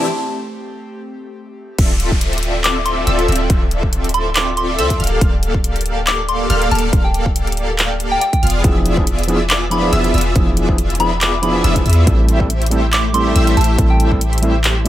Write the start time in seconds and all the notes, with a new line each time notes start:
Already playing: A3 C4 G4
1.78 D1 C4 F4 A4 D5 E5 E6, kick, closed hi-hat, crash, downlifter
2.00 closed hi-hat
2.12 kick
2.21 closed hi-hat
2.33 closed hi-hat
2.38 closed hi-hat
2.43 closed hi-hat
2.64 D6, clap, closed hi-hat
2.85 C6, closed hi-hat
3.07 D1 C4 F4 A4 D5 E5 E6, closed hi-hat
3.19 closed hi-hat
3.28 D1 C4 F4 A4 D5 E5 E6, closed hi-hat
3.32 closed hi-hat
3.36 closed hi-hat
3.50 D1 C4 A4 E5 E6, kick, closed hi-hat
3.71 closed hi-hat
3.83 kick
3.93 closed hi-hat
4.04 closed hi-hat
4.09 closed hi-hat
4.14 C6, closed hi-hat
4.35 D6, clap, closed hi-hat
4.57 C6, closed hi-hat
4.78 D2 C4 F4 A4 D5 E5 E6, closed hi-hat
4.90 kick, closed hi-hat
5.00 D1 A#3 G4 A4 D5 F5 F6, closed hi-hat
5.04 closed hi-hat
5.07 closed hi-hat
5.21 D1 A#3 G4 A4 D5 F5 F6, kick, closed hi-hat
5.43 closed hi-hat
5.54 kick
5.64 closed hi-hat
5.76 closed hi-hat
5.81 closed hi-hat
5.86 closed hi-hat
6.07 D6, clap, closed hi-hat
6.29 C6, closed hi-hat
6.50 D1 A#3 G4 A4 D5 F5 F6, closed hi-hat
6.62 closed hi-hat
6.71 D1 A#3 G4 A4 D5 F5 A5 F6, closed hi-hat
6.75 closed hi-hat
6.79 closed hi-hat
6.93 D1 A#3 G4 A4 D5 F5 F6, kick, closed hi-hat
7.04 G5
7.14 closed hi-hat
7.26 kick
7.36 closed hi-hat
7.47 closed hi-hat
7.52 closed hi-hat
7.57 closed hi-hat
7.79 clap, closed hi-hat
8.00 closed hi-hat
8.11 G5
8.21 G5, closed hi-hat
8.33 G5, kick, closed hi-hat
8.43 E1 B3 F4 G#4 D5 F5 F6, closed hi-hat
8.47 closed hi-hat
8.50 closed hi-hat
8.63 E1 F3 B3 D4 E4 F4 G#4 D5 E5 E6, kick, closed hi-hat
8.86 closed hi-hat
8.96 F3 B3 D4 E4 G#4, kick
9.07 closed hi-hat
9.19 closed hi-hat
9.23 closed hi-hat
9.28 F3 B3 D4 E4 G#4, closed hi-hat
9.50 D6, clap, closed hi-hat
9.70 F3 B3 D4 E4 G#4 B5, closed hi-hat
9.82 F3 B3 D4 E4 G#4
9.93 E1 B3 F4 G#4 D5 E5 E6, closed hi-hat
10.03 F3 B3 D4 E4 G#4, closed hi-hat
10.14 E1 B3 F4 G#4 D5 E5 E6, closed hi-hat
10.18 closed hi-hat
10.21 closed hi-hat
10.34 E1 F3 B3 D4 E4 F4 G#4 D5 E6, kick, closed hi-hat
10.57 closed hi-hat
10.68 F3 B3 D4 E4 G#4, kick
10.78 closed hi-hat
10.90 closed hi-hat
10.95 F3, closed hi-hat
10.99 B3 D4 E4 G#4 B5, closed hi-hat
11.21 D6, clap, closed hi-hat
11.42 F3 B3 D4 E4 G#4 B5, closed hi-hat
11.53 F3 B3 D4 E4 G#4
11.64 E1 B3 F4 G#4 D5 E5 E6, closed hi-hat
11.75 F3 B3 D4 E4 G#4, kick, closed hi-hat
11.86 E2 B3 F4 G#4 D5 E5 E6, closed hi-hat
11.90 closed hi-hat
11.93 closed hi-hat
12.06 A1 G3 A3 C4 E4 G4 A4 E6, kick, closed hi-hat
12.29 closed hi-hat
12.39 G3 A3 C4 E4 A4, kick
12.50 closed hi-hat
12.62 closed hi-hat
12.66 G3, closed hi-hat
12.71 A3 C4 E4 A4, closed hi-hat
12.93 D6, clap, closed hi-hat
13.13 G3 A3 C4 E4 A4 C6, closed hi-hat
13.25 G3 A3 C4 E4 A4
13.36 A1 A3 E4 G4 C5 E5 E6, closed hi-hat
13.46 G3 A3 C4 E4 A4, closed hi-hat
13.57 A1 A3 E4 G4 C5 E5 A5 E6, closed hi-hat
13.61 closed hi-hat
13.64 closed hi-hat
13.77 A1 G3 A3 C4 E4 G4 A4 E5 E6, kick, closed hi-hat
13.90 G5
14.00 closed hi-hat
14.11 G3 A3 C4 E4 A4, kick
14.21 closed hi-hat
14.33 closed hi-hat
14.38 closed hi-hat
14.42 G3 A3 C4 E4 A4, closed hi-hat
14.64 clap, closed hi-hat
14.85 G3 A3